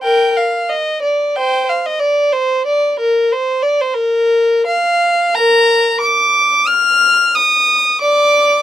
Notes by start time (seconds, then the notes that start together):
0.03 A#4 G5
0.37 F5
0.70 D#5
1.02 D5
1.36 C5 G5
1.69 F5
1.86 D#5
2.00 D5
2.33 C5
2.66 D5
2.99 A#4
3.32 C5
3.62 D5
3.81 C5
3.94 A#4
4.66 F5
5.35 A#4 A#5
6.00 D6
6.67 F6
7.35 D#6
8.01 D5 D6